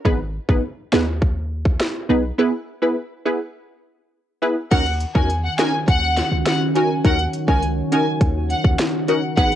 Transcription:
0.05 808-style bass G#1, synth stab B3 D#4 G#4 B4, kick
0.49 808-style bass G#1, synth stab B3 D#4 G#4 B4, kick
0.92 808-style bass D#2, synth stab B3 D#4 G#4 B4, snare
1.22 kick
1.65 kick
1.80 snare
2.09 808-style bass B1, synth stab B3 D#4 G#4 B4
2.38 synth stab B3 E4 G#4 B4
2.82 synth stab B3 E4 G#4 B4
3.26 synth stab B3 E4 G#4 B4
4.42 synth stab B3 E4 G#4 B4
4.71 808-style bass D#2, ambient pad D#3 C#4 F#4, synth stab C#4 D#4 F#4 A#4, violin section F#5, kick, closed hi-hat, crash
4.86 closed hi-hat
5.00 closed hi-hat
5.15 808-style bass E2, synth stab C#4 D#4 F#4 A#4, violin section G#5, kick
5.30 closed hi-hat
5.44 violin section F#5
5.59 synth stab C#4 D#4 F#4 A#4, violin section G#5, snare, closed hi-hat
5.88 808-style bass D#2, violin section F#5, kick, closed hi-hat
6.17 snare, closed hi-hat
6.32 808-style bass C#2
6.46 violin section F#5, snare, closed hi-hat
6.75 synth stab C#4 D#4 F#4 A#4, violin section G#5, closed hi-hat
7.04 808-style bass D#2, synth stab C#4 D#4 F#4 A#4, violin section F#5, kick, closed hi-hat
7.19 closed hi-hat
7.33 closed hi-hat
7.48 808-style bass C#2, synth stab C#4 D#4 F#4 A#4, violin section G#5, kick
7.62 closed hi-hat
7.92 synth stab C#4 D#4 F#4 A#4, violin section G#5, closed hi-hat
8.21 808-style bass D#2, kick, closed hi-hat
8.50 violin section F#5, closed hi-hat
8.64 808-style bass D#2, kick
8.79 snare, closed hi-hat
9.08 synth stab C#4 D#4 F#4 A#4, violin section F#5, closed hi-hat
9.37 808-style bass G#1, ambient pad D#3 B3 G#4, synth stab B3 D#4 G#4 B4, violin section F#5, kick, closed hi-hat
9.52 closed hi-hat

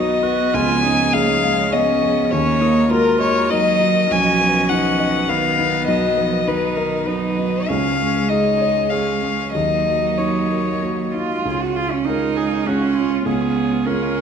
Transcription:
Already playing: felt piano B1 F#3 F#4 B4 D#5, string section D#3 B4 D#5, cello B3, viola D#4, violin D#5
0.23 viola F#4, felt piano B4
0.53 felt piano C#2, string section F3 G#4 C#5, viola F4, violin G#5
0.84 felt piano C#4, viola D#4
1.13 cello A#3, felt piano G#4, violin F5
1.43 cello G#3, felt piano F5
1.72 cello B3, viola C#4, felt piano C#5, violin D#5
2.03 felt piano G#4
2.31 felt piano D#2, string section D#3 A#4 D#5, cello A#3, viola C#4, violin C#5
2.61 felt piano A#3, viola D#4
2.90 cello G#3, viola F4, felt piano F#4, violin A#4
3.20 violin C#5, felt piano D#5
3.50 cello F#3, viola D#4, felt piano A#4, violin D#5
3.80 felt piano F#4
4.11 felt piano B1, cello F3, string section B3, viola C#4, violin G#5
4.41 felt piano B3
4.69 felt piano D#4, violin F#5
5.00 felt piano D#5
5.28 cello D#3, viola B3, felt piano B4, violin F5
5.59 felt piano D#4
5.87 felt piano B1, cello F#3, violin D#5
6.17 cello F3, felt piano B3
6.47 cello D#3, viola D#4, felt piano D#4, violin B4
6.76 violin A#4, felt piano D#5
7.06 cello F#3, viola D#4, violin B4, felt piano B4
7.38 felt piano D#4
7.68 felt piano C#2, cello G#3, string section G#3 G#4 C#5, viola C#4, violin F5
8.00 felt piano G#3, viola C#4
8.29 cello G#3, viola D#4, felt piano G#4, violin D#5
8.61 felt piano C#5
8.90 viola C#4, felt piano G#4, violin F5
9.23 felt piano C#4
9.52 felt piano D#2, string section F#3 A#3 D#5, cello F#3, viola D#4, violin D#5
9.86 felt piano F#3
10.18 felt piano D#4, violin C#5
10.51 felt piano A#4
10.82 felt piano F#4
11.14 felt piano D#4, cello F4
11.45 felt piano C#2, string section G#3 C#5 F5, violin G#4
11.60 violin F4, cello F#4
11.76 cello F4, violin G#4
11.91 cello C#4, violin F4
12.05 felt piano G#3 C#4 F4, cello D#4, violin G#4, viola A#4
12.23 violin F4
12.37 viola G#4, violin G#4
12.53 violin F4
12.66 felt piano G#3 C#4 F4, cello C#4, viola F#4, violin G#4
12.81 violin F4
12.95 viola F4, violin G#4
13.10 violin F4
13.25 felt piano C#2, cello B3, viola G#4, violin G#4
13.41 violin F4
13.56 violin G#4
13.71 violin F4
13.86 felt piano G#3 C#4 F4, cello C#4, violin G#4, viola A#4
14.02 violin F4
14.17 violin G#4

